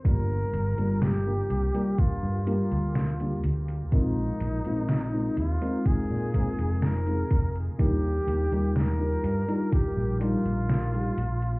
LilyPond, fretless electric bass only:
\new Staff \with { instrumentName = "Fretless electric bass" } { \clef bass \time 4/4 \key ees \major \tempo 4 = 62 g,,8 g,,16 g,,8. c,16 r8 g,8 d,8. d,8 | bes,,8 bes,,16 bes,,8. ees,16 r8 bes,8 f,,8. f,,8 | ees,8 ees,16 ees,8. g,16 r8 bes,,8 bes,,8. bes,,8 | }